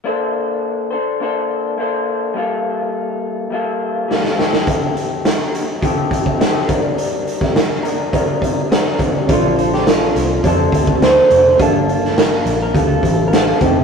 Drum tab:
HH |----------------|----------------|x-x-x-x-x-x-x-x-|x-x-x-x-x-x-x-x-|
SD |----------------|------------oooo|----o-------o---|---oo-------o---|
BD |----------------|----------------|o-------o-oo--o-|---o----o-o---o-|

HH |x-x-x-x-x-x-x-x-|x-x-x-x-x-x-x-x-|
SD |---oo-------o---|---oo-------o---|
BD |o-------o-oo----|o-------o-o---o-|